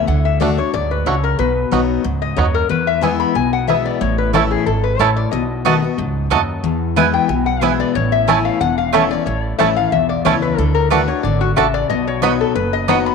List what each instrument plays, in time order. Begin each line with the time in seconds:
0.07 upright bass D2, steel-string acoustic guitar D3, resonator guitar played with a steel bar F#5
0.25 resonator guitar played with a steel bar E5
0.40 steel-string acoustic guitar D3 A3 D4 F#4, five-string banjo A3 D4 F#4, resonator guitar played with a steel bar D5
0.57 steel-string acoustic guitar D4 F#4, resonator guitar played with a steel bar C#5
0.74 upright bass D2, steel-string acoustic guitar G#2, resonator guitar played with a steel bar D5
0.91 resonator guitar played with a steel bar B4
1.06 upright bass C#2, steel-string acoustic guitar C#3, five-string banjo A3 D4 F#4, resonator guitar played with a steel bar C#5
1.24 resonator guitar played with a steel bar A#4
1.39 upright bass B1, steel-string acoustic guitar B2, resonator guitar played with a steel bar B4
1.71 upright bass B1, steel-string acoustic guitar F#3 B3 D#4 F#4, five-string banjo B3 D#4 F#4
2.04 upright bass C#2, steel-string acoustic guitar G#2
2.22 resonator guitar played with a steel bar D#5
2.36 upright bass D#2, steel-string acoustic guitar F#2, five-string banjo B3 D#4 F#4, resonator guitar played with a steel bar C#5
2.54 resonator guitar played with a steel bar A#4
2.69 steel-string acoustic guitar E2, upright bass E2, resonator guitar played with a steel bar B4
2.87 resonator guitar played with a steel bar E5
3.01 steel-string acoustic guitar E3 G#3 B3 E4, five-string banjo B3 E4, resonator guitar played with a steel bar G#5
3.20 resonator guitar played with a steel bar B5
3.35 upright bass B1, steel-string acoustic guitar B2, resonator guitar played with a steel bar G#5
3.53 resonator guitar played with a steel bar F#5
3.68 steel-string acoustic guitar E3 G#3 B3 E4, five-string banjo B3 E4, resonator guitar played with a steel bar E5
3.85 resonator guitar played with a steel bar D5
4.01 upright bass A1, steel-string acoustic guitar A2, resonator guitar played with a steel bar C#5
4.18 resonator guitar played with a steel bar B4
4.33 steel-string acoustic guitar E3 A3 C#4 E4, mandolin A3 E4 C#5 A5, five-string banjo A3 C#4 E4, resonator guitar played with a steel bar A4
4.51 resonator guitar played with a steel bar G#4
4.66 upright bass G#1, steel-string acoustic guitar G#2, resonator guitar played with a steel bar A4
4.84 resonator guitar played with a steel bar B4
4.99 upright bass A1, steel-string acoustic guitar A2, mandolin A3 E4 C#5 A5, five-string banjo A3 C#4 E4, resonator guitar played with a steel bar C#5
5.16 resonator guitar played with a steel bar D5
5.31 upright bass B1, steel-string acoustic guitar B2, resonator guitar played with a steel bar D#5
5.65 steel-string acoustic guitar D#3 A3 B3 F#4, five-string banjo A3 D#4 F#4, mandolin B3 F#4 D#5 A5
5.82 steel-string acoustic guitar B3 F#4
5.98 upright bass C#2, steel-string acoustic guitar G#2
6.30 upright bass D#2, steel-string acoustic guitar F#2, five-string banjo A3 D#4 F#4, mandolin B3 F#4 D#5 A5
6.63 upright bass E2, steel-string acoustic guitar E2
6.96 steel-string acoustic guitar E3 G#3 B3 E4, mandolin B3 E4 B4 G#5, five-string banjo B3 E4
7.14 resonator guitar played with a steel bar G5
7.29 upright bass B1, steel-string acoustic guitar B2, resonator guitar played with a steel bar G#5
7.46 resonator guitar played with a steel bar F#5
7.61 steel-string acoustic guitar E3 G#3 B3 E4, mandolin B3 E4 B4 G#5, five-string banjo B3 E4, resonator guitar played with a steel bar E5
7.80 resonator guitar played with a steel bar D5
7.95 upright bass A1, steel-string acoustic guitar A2, resonator guitar played with a steel bar C#5
8.12 resonator guitar played with a steel bar E5
8.27 steel-string acoustic guitar E3 A3 C#4 E4, mandolin A3 E4 C#5 A5, five-string banjo A3 C#4 E4, resonator guitar played with a steel bar G#5
8.45 resonator guitar played with a steel bar F5
8.61 upright bass E1, steel-string acoustic guitar E2, resonator guitar played with a steel bar F#5
8.78 resonator guitar played with a steel bar F5
8.93 steel-string acoustic guitar E3 A3 C#4 E4, mandolin A3 E4 C#5 A5, five-string banjo A3 C#4 E4, resonator guitar played with a steel bar E5
9.11 steel-string acoustic guitar C#4 E4, resonator guitar played with a steel bar D5
9.26 upright bass A1, steel-string acoustic guitar A2, resonator guitar played with a steel bar C#5
9.43 resonator guitar played with a steel bar D5
9.59 upright bass A1, steel-string acoustic guitar E3 A3 C#4 E4, mandolin A3 E4 C#5 A5, five-string banjo A3 C#4 E4, resonator guitar played with a steel bar E5
9.76 steel-string acoustic guitar C#4 E4, resonator guitar played with a steel bar F5
9.92 upright bass B1, steel-string acoustic guitar E2, resonator guitar played with a steel bar E5
10.09 resonator guitar played with a steel bar D5
10.25 upright bass C#2, steel-string acoustic guitar E3 A3 C#4 E4, mandolin A3 E4 C#5 A5, five-string banjo A3 C#4 E4, resonator guitar played with a steel bar C#5
10.42 steel-string acoustic guitar C#4 E4, resonator guitar played with a steel bar B4
10.58 upright bass D2, steel-string acoustic guitar D3, resonator guitar played with a steel bar A4
10.75 resonator guitar played with a steel bar A#4
10.90 steel-string acoustic guitar D3 A3 D4 F#4, mandolin A3 F#4 D5 A5, five-string banjo A3 D4 F#4, resonator guitar played with a steel bar B4
11.08 steel-string acoustic guitar D4 F#4, resonator guitar played with a steel bar C#5
11.23 upright bass G#1, steel-string acoustic guitar D3, resonator guitar played with a steel bar D5
11.41 resonator guitar played with a steel bar F#4
11.56 upright bass A1, steel-string acoustic guitar C#3, mandolin A3 F#4 D5 A5, five-string banjo A3 D4 F#4, resonator guitar played with a steel bar E5
11.74 resonator guitar played with a steel bar D5
11.90 upright bass B1, steel-string acoustic guitar B2, resonator guitar played with a steel bar D#5
12.07 resonator guitar played with a steel bar C#5
12.22 steel-string acoustic guitar F#3 B3 D#4 F#4, mandolin B3 F#4 D#5 B5, five-string banjo B3 D#4 F#4, resonator guitar played with a steel bar B4
12.41 resonator guitar played with a steel bar A4
12.55 upright bass F#1, steel-string acoustic guitar F#2, resonator guitar played with a steel bar B4
12.73 resonator guitar played with a steel bar D#5
12.88 steel-string acoustic guitar F#3 B3 D#4 F#4, mandolin B3 F#4 D#5 B5, five-string banjo B3 D#4 F#4, resonator guitar played with a steel bar F#5
13.06 resonator guitar played with a steel bar B5